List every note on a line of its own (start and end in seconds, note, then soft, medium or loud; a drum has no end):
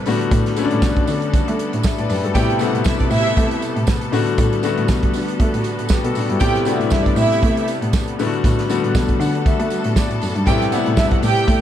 0.00 2.30 G3 medium
0.00 8.15 A4 medium
0.06 0.27 A2 medium
0.06 0.48 D3 medium
0.06 0.48 G3 medium
0.06 0.49 A3 medium
0.06 11.61 B3 medium
0.06 0.49 B3 medium
0.06 2.33 F#4 medium
0.06 0.49 F#4 loud
0.06 open hi-hat medium
0.06 tambourine soft
0.21 closed hi-hat soft
0.31 0.52 A2 loud
0.31 kick loud
0.31 closed hi-hat medium
0.31 tambourine medium
0.46 snare soft
0.46 closed hi-hat soft
0.56 1.27 D3 medium
0.56 1.27 G3 medium
0.56 1.27 A3 medium
0.56 1.28 B3 medium
0.56 0.65 C#4 medium
0.56 closed hi-hat medium
0.56 tambourine medium
0.64 1.31 D4 loud
0.71 0.81 A2 loud
0.71 closed hi-hat soft
0.82 1.02 B2 medium
0.82 kick loud
0.82 snare loud
0.82 tambourine medium
0.96 kick loud
0.96 closed hi-hat soft
1.07 1.28 D3 loud
1.07 open hi-hat medium
1.07 tambourine medium
1.22 closed hi-hat soft
1.33 1.44 A3 medium
1.33 kick loud
1.33 closed hi-hat medium
1.33 tambourine soft
1.48 1.57 A3 loud
1.48 closed hi-hat medium
1.59 closed hi-hat medium
1.73 1.82 A2 medium
1.73 closed hi-hat soft
1.83 1.98 E5 medium
1.83 kick loud
1.83 snare loud
1.83 tambourine loud
1.98 2.07 A2 medium
1.98 2.09 B4 medium
1.98 2.09 D5 medium
1.98 closed hi-hat medium
2.09 2.21 F#2 medium
2.09 2.24 G4 medium
2.09 2.24 B4 medium
2.09 open hi-hat medium
2.09 tambourine medium
2.24 2.32 G2 medium
2.24 2.49 F#4 medium
2.24 2.48 A4 medium
2.24 closed hi-hat soft
2.35 2.55 A2 loud
2.35 2.53 C3 medium
2.35 4.11 C3 medium
2.35 2.53 G3 medium
2.35 2.54 A3 medium
2.35 2.54 B3 medium
2.35 2.54 E4 loud
2.35 2.46 G4 loud
2.35 4.11 G4 medium
2.35 2.46 G5 loud
2.35 kick loud
2.35 closed hi-hat medium
2.35 tambourine medium
2.50 closed hi-hat soft
2.59 2.67 B2 medium
2.59 3.30 G3 medium
2.59 3.31 A3 medium
2.59 3.31 B3 medium
2.59 3.31 E4 loud
2.59 2.71 F#4 medium
2.59 2.71 F#5 medium
2.59 closed hi-hat medium
2.59 tambourine medium
2.66 3.33 C3 medium
2.74 2.83 A2 medium
2.74 closed hi-hat soft
2.84 3.06 G2 medium
2.84 2.96 E4 medium
2.84 2.96 E5 loud
2.84 kick loud
2.84 snare loud
2.84 tambourine medium
2.99 3.08 D4 medium
2.99 3.09 D5 medium
2.99 kick loud
2.99 closed hi-hat soft
3.10 3.31 A2 loud
3.10 3.58 E4 loud
3.10 3.58 E5 loud
3.10 open hi-hat medium
3.10 tambourine medium
3.26 closed hi-hat medium
3.36 3.57 A3 loud
3.36 kick loud
3.36 closed hi-hat medium
3.36 tambourine soft
3.51 closed hi-hat medium
3.62 closed hi-hat medium
3.62 tambourine soft
3.76 3.85 A2 loud
3.76 closed hi-hat soft
3.87 kick loud
3.87 snare loud
3.87 tambourine loud
4.01 closed hi-hat medium
4.12 4.32 A2 loud
4.12 4.54 D3 medium
4.12 4.54 G3 medium
4.12 6.39 G3 medium
4.12 4.55 A3 medium
4.12 4.55 B3 medium
4.12 4.55 F#4 loud
4.12 6.39 F#4 medium
4.12 open hi-hat medium
4.12 tambourine soft
4.27 closed hi-hat medium
4.38 4.58 A2 loud
4.38 kick loud
4.38 closed hi-hat medium
4.38 tambourine medium
4.53 closed hi-hat soft
4.63 5.33 D3 medium
4.63 5.33 G3 medium
4.63 5.34 A3 medium
4.63 5.34 B3 medium
4.63 5.34 F#4 loud
4.63 closed hi-hat medium
4.63 tambourine medium
4.78 4.86 A2 loud
4.78 closed hi-hat soft
4.88 5.09 B2 loud
4.88 kick loud
4.88 snare loud
4.88 tambourine loud
5.03 kick loud
5.03 closed hi-hat soft
5.13 5.34 D3 medium
5.13 open hi-hat medium
5.13 tambourine medium
5.28 closed hi-hat soft
5.40 5.51 A3 loud
5.40 kick loud
5.40 closed hi-hat medium
5.54 5.63 A2 medium
5.54 closed hi-hat medium
5.64 closed hi-hat medium
5.64 tambourine soft
5.79 5.88 A2 medium
5.79 closed hi-hat soft
5.89 6.05 G4 medium
5.89 6.05 B4 medium
5.89 kick loud
5.89 snare loud
5.89 tambourine loud
6.04 6.13 B2 loud
6.04 6.16 F#4 medium
6.04 6.15 A4 medium
6.04 closed hi-hat medium
6.15 6.27 A2 medium
6.15 6.30 D4 medium
6.15 6.30 F#4 medium
6.15 open hi-hat medium
6.15 tambourine medium
6.30 6.39 G2 medium
6.30 6.41 E4 medium
6.30 6.54 G4 medium
6.30 closed hi-hat soft
6.40 6.61 A2 loud
6.40 6.59 C3 medium
6.40 8.17 C3 medium
6.40 6.59 G3 medium
6.40 6.59 A3 medium
6.40 6.60 B3 medium
6.40 6.60 E4 medium
6.40 6.52 G4 loud
6.40 8.17 G4 medium
6.40 6.52 G5 loud
6.40 kick loud
6.40 closed hi-hat loud
6.40 tambourine medium
6.55 snare soft
6.55 closed hi-hat soft
6.65 7.36 C3 medium
6.65 7.37 G3 medium
6.65 7.37 A3 medium
6.65 7.37 B3 medium
6.65 6.74 D4 medium
6.65 6.77 F#4 medium
6.65 6.78 F#5 medium
6.65 closed hi-hat medium
6.65 tambourine medium
6.74 7.40 E4 loud
6.79 6.89 A2 medium
6.79 closed hi-hat soft
6.90 7.12 G2 loud
6.90 7.03 E4 medium
6.90 7.03 E5 loud
6.90 kick loud
6.90 snare loud
6.90 tambourine medium
7.04 7.14 D4 medium
7.04 7.14 D5 medium
7.04 kick loud
7.04 closed hi-hat soft
7.16 7.37 A2 loud
7.16 7.64 E4 loud
7.16 7.64 E5 loud
7.16 open hi-hat medium
7.16 tambourine medium
7.32 closed hi-hat medium
7.43 7.63 A3 loud
7.43 kick loud
7.43 closed hi-hat medium
7.57 closed hi-hat medium
7.68 closed hi-hat medium
7.68 tambourine soft
7.82 7.91 A2 loud
7.82 closed hi-hat medium
7.93 kick loud
7.93 snare loud
7.93 tambourine loud
8.08 closed hi-hat medium
8.19 8.39 A2 medium
8.19 8.61 D3 loud
8.19 8.61 G3 medium
8.19 10.46 G3 medium
8.19 8.61 A3 medium
8.19 8.61 B3 medium
8.19 8.27 E4 medium
8.19 10.46 F#4 medium
8.19 11.61 A4 medium
8.19 open hi-hat medium
8.19 tambourine medium
8.26 8.64 F#4 loud
8.34 closed hi-hat soft
8.44 8.64 A2 loud
8.44 kick loud
8.44 closed hi-hat medium
8.44 tambourine medium
8.59 snare soft
8.59 closed hi-hat medium
8.69 9.39 D3 medium
8.69 9.40 G3 medium
8.69 9.40 A3 medium
8.69 9.40 B3 medium
8.69 9.40 F#4 loud
8.69 closed hi-hat medium
8.69 tambourine medium
8.84 8.93 A2 medium
8.84 closed hi-hat soft
8.95 9.15 B2 loud
8.95 kick loud
8.95 snare loud
8.95 tambourine loud
9.08 kick medium
9.08 closed hi-hat soft
9.20 9.40 D3 loud
9.20 9.44 F#5 medium
9.20 open hi-hat medium
9.20 tambourine medium
9.35 closed hi-hat medium
9.46 9.56 A3 medium
9.46 9.93 E5 medium
9.46 kick loud
9.46 closed hi-hat medium
9.46 tambourine soft
9.60 9.69 A3 loud
9.60 closed hi-hat medium
9.70 closed hi-hat medium
9.70 tambourine soft
9.84 9.94 A2 loud
9.84 closed hi-hat medium
9.96 10.44 D5 medium
9.96 kick loud
9.96 snare loud
9.96 tambourine loud
10.10 10.19 A2 medium
10.10 closed hi-hat soft
10.21 10.33 F#2 medium
10.21 open hi-hat medium
10.21 tambourine medium
10.35 10.44 G2 loud
10.35 closed hi-hat soft
10.46 10.67 A2 loud
10.46 10.65 C3 medium
10.46 11.61 C3 medium
10.46 10.66 G3 medium
10.46 10.66 A3 medium
10.46 10.66 B3 medium
10.46 10.66 E4 loud
10.46 10.58 G4 loud
10.46 11.61 G4 medium
10.46 10.58 G5 loud
10.46 kick loud
10.46 closed hi-hat medium
10.46 tambourine medium
10.62 snare soft
10.62 closed hi-hat soft
10.71 11.43 C3 medium
10.71 11.43 G3 medium
10.71 11.43 A3 medium
10.71 11.43 B3 medium
10.71 11.43 E4 loud
10.71 10.83 F#4 medium
10.71 10.83 F#5 loud
10.71 closed hi-hat medium
10.71 tambourine medium
10.86 10.95 A2 loud
10.86 closed hi-hat soft
10.97 11.18 G2 medium
10.97 11.09 E4 medium
10.97 11.09 E5 loud
10.97 kick loud
10.97 snare loud
10.97 tambourine medium
11.11 11.20 F#4 medium
11.11 11.20 F#5 medium
11.11 kick loud
11.11 closed hi-hat soft
11.23 11.43 A2 loud
11.23 11.61 G4 loud
11.23 11.61 G5 loud
11.23 open hi-hat medium
11.23 tambourine medium
11.37 closed hi-hat medium
11.48 11.61 A3 loud
11.48 kick loud
11.48 closed hi-hat medium
11.48 tambourine soft